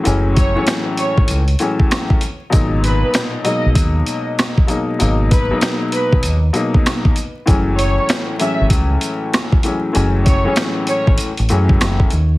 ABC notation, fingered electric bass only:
X:1
M:4/4
L:1/16
Q:"Swing 16ths" 1/4=97
K:F#dor
V:1 name="Fingered electric bass" clef=bass
F,,,4 z3 G,,, C,,2 z6 | G,,,4 z3 B,,, D,,2 z6 | G,,,4 z3 B,,, D,,2 z6 | F,,,4 z3 G,,, C,,2 z6 |
F,,,4 z3 G,,, z A,,, F,,2 F,,,2 D,,2 |]